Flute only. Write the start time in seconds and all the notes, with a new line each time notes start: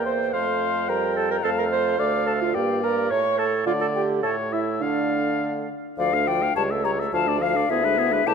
0.05 C6
0.34 C6
0.90 A#5
1.16 A5
1.31 A#5
1.44 A5
1.58 A#5
1.72 C6
1.99 D6
2.27 A5
2.41 F5
2.55 G5
2.84 A#5
3.11 C#6
3.39 A5
3.66 F5
3.80 A5
3.95 G5
4.23 A5
4.53 E5
4.82 D5
5.98 F5
6.28 G5
6.56 A5
6.84 A#5
7.14 A5
7.41 F5
7.70 E5
8.27 A5